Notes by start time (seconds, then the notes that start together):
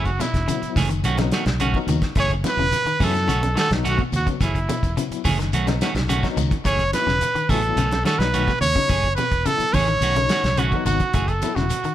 Already playing: F#1
0.05 F#4, kick, closed hi-hat, shekere
0.20 B2 E4, muted clean electric guitar stroke, snare, closed hi-hat, high conga, shekere
0.33 E1, kick, snare, closed hi-hat, shekere
0.48 C#3 F#3 B3 E4, muted clean electric guitar stroke, closed hi-hat, high conga, shekere
0.62 muted clean electric guitar stroke, muted fingered electric bass stroke, closed hi-hat, shekere
0.76 F#1 E3 A3 C#4 G#4, kick, snare, open hi-hat, high conga, low conga, shekere
0.89 D#3, muted clean electric guitar stroke, closed hi-hat, shekere
1.03 B1 D#3 A3 C#4 F#4, closed hi-hat, high conga, shekere
1.18 C#3 F#3 B3 D#4, muted clean electric guitar stroke, snare, closed hi-hat, high conga, shekere
1.32 D#3 A3 C#4 F#4, snare, closed hi-hat, shekere
1.46 B1, muted clean electric guitar stroke, snare, closed hi-hat, low conga, shekere
1.60 C#3 D#3 A3 C#4 F#4, closed hi-hat, shekere
1.74 F#3 B3 D#4, kick, high conga, shekere
1.87 D#2 D#3, muted clean electric guitar stroke, closed hi-hat, low conga, shekere
2.02 muted clean electric guitar stroke, kick, snare, closed hi-hat, shekere
2.15 F#1 E3 A3 C#4 G#4, kick, closed hi-hat, shekere
2.20 C#5
2.30 kick, closed hi-hat, shekere
2.44 F#3 B3 E4, muted clean electric guitar stroke, snare, closed hi-hat, high conga, shekere
2.48 B4
2.57 E1 C#3, shekere
2.72 muted clean electric guitar stroke, closed hi-hat, high conga, shekere
2.85 D#3, muted fingered electric bass stroke, muted clean electric guitar stroke, closed hi-hat, shekere
3.00 F#2 E3 F#3 A3 B3 C#4 E4 G#4, kick, open hi-hat, high conga, low conga, shekere
3.04 A4
3.15 muted clean electric guitar stroke, snare, closed hi-hat, shekere
3.28 B1 C#3 D#3 A3 C#4 F#4, closed hi-hat, high conga, shekere
3.43 muted clean electric guitar stroke, closed hi-hat, high conga, shekere
3.56 D#3 A3 C#4 F#4 A4, snare, closed hi-hat, shekere
3.71 B1 F#3 B3 D#4, muted clean electric guitar stroke, snare, closed hi-hat, low conga, shekere
3.84 D#3 A3 C#4 F#4, closed hi-hat, shekere
3.89 F#4
3.98 B2, kick, high conga, shekere
4.12 D#2 F#4, muted clean electric guitar stroke, closed hi-hat, low conga, shekere
4.26 C#3 F#3 B3 F#4, muted clean electric guitar stroke, kick, closed hi-hat, high conga, shekere
4.40 F#1 E3 A3 C#4 E4 G#4, kick, snare, closed hi-hat, shekere
4.55 kick, closed hi-hat, shekere
4.69 B2, muted clean electric guitar stroke, closed hi-hat, high conga, shekere
4.82 E1, kick, closed hi-hat, shekere
4.97 C#3 F#3 B3 E4, muted clean electric guitar stroke, closed hi-hat, shekere
5.11 muted fingered electric bass stroke, muted clean electric guitar stroke, closed hi-hat, shekere
5.24 F#1 E3 A3 C#4 G#4, kick, open hi-hat, high conga, low conga, shekere
5.39 D#3, muted clean electric guitar stroke, snare, closed hi-hat, shekere
5.53 B1 D#3 A3 C#4 F#4, closed hi-hat, shekere
5.67 C#3 F#3 B3 D#4, muted clean electric guitar stroke, snare, closed hi-hat, high conga, shekere
5.81 D#3 A3 C#4 F#4, snare, closed hi-hat, shekere
5.95 B1, muted clean electric guitar stroke, snare, closed hi-hat, low conga, shekere
6.08 C#3 D#3 A3 C#4 F#4, snare, closed hi-hat, shekere
6.23 F#3 B3 D#4, kick, snare, high conga, shekere
6.37 C#2 D#3, muted clean electric guitar stroke, closed hi-hat, low conga, shekere
6.51 muted clean electric guitar stroke, kick, closed hi-hat, high conga, shekere
6.64 F#1 E3 A3 C#4 G#4 C#5, muted clean electric guitar stroke, kick, closed hi-hat, shekere
6.79 kick, closed hi-hat, shekere
6.93 F#3 B3 E4 B4, muted clean electric guitar stroke, snare, closed hi-hat, high conga, shekere
7.06 E1 C#3, snare, shekere
7.21 muted clean electric guitar stroke, closed hi-hat, high conga, shekere
7.35 D#3, muted fingered electric bass stroke, muted clean electric guitar stroke, closed hi-hat, shekere
7.49 A1 E3 F#3 A3 B3 C#4 E4 G#4 A4, kick, open hi-hat, high conga, low conga, shekere
7.63 muted clean electric guitar stroke, closed hi-hat, shekere
7.76 B1 C#3 D#3 A3 C#4, muted clean electric guitar stroke, closed hi-hat, high conga, shekere
7.91 muted clean electric guitar stroke, snare, closed hi-hat, high conga, shekere
8.05 D#3 A3 C#4 F#4 A4, snare, closed hi-hat, shekere
8.19 B1 F#3 B3 D#4 B4, snare, closed hi-hat, shekere
8.34 D#3 A3 C#4 F#4, closed hi-hat, shekere
8.48 B2, kick, snare, high conga, shekere
8.61 D#2 C#5, muted clean electric guitar stroke, closed hi-hat, low conga, shekere
8.75 C#3 F#3 B3 D#4, muted clean electric guitar stroke, kick, closed hi-hat
8.89 F#1 E3 A3 C#4 G#4, kick, closed hi-hat, shekere
9.03 kick, closed hi-hat
9.16 B2 B4, muted clean electric guitar stroke, closed hi-hat, high conga, shekere
9.31 E1, kick, closed hi-hat, shekere
9.45 C#3 F#3 B3 E4 A4, muted clean electric guitar stroke, closed hi-hat, high conga, shekere
9.59 muted fingered electric bass stroke, muted clean electric guitar stroke, closed hi-hat, shekere
9.73 A1 E3 A3 C#4 G#4 C#5, kick, open hi-hat, high conga, low conga, shekere
9.88 D#3, muted clean electric guitar stroke, closed hi-hat, shekere
10.01 B1 D#3 A3 C#4 F#4, closed hi-hat, high conga, shekere
10.15 C#3 F#3 B3 D#4, muted clean electric guitar stroke, closed hi-hat, high conga, shekere
10.29 D#3 A3 C#4 F#4, snare, closed hi-hat, shekere
10.43 B1, muted clean electric guitar stroke, snare, closed hi-hat, low conga, shekere
10.57 C#3 D#3 A3 C#4 F#4, closed hi-hat, shekere
10.71 F#3 B3 D#4, kick, high conga, shekere
10.85 G#1 D#3 F#4, muted clean electric guitar stroke, closed hi-hat, low conga, shekere
10.99 muted clean electric guitar stroke, kick, closed hi-hat, high conga, shekere
11.14 F#1 E3 A3 G#4, muted clean electric guitar stroke, kick, closed hi-hat, shekere
11.28 A4, kick, closed hi-hat, shekere
11.42 F#3 B3 E4, muted clean electric guitar stroke, closed hi-hat, high conga, shekere
11.55 E1 C#3 F#4, snare, shekere
11.69 muted clean electric guitar stroke, closed hi-hat, high conga, shekere
11.83 D#3, muted clean electric guitar stroke, muted fingered electric bass stroke, closed hi-hat, shekere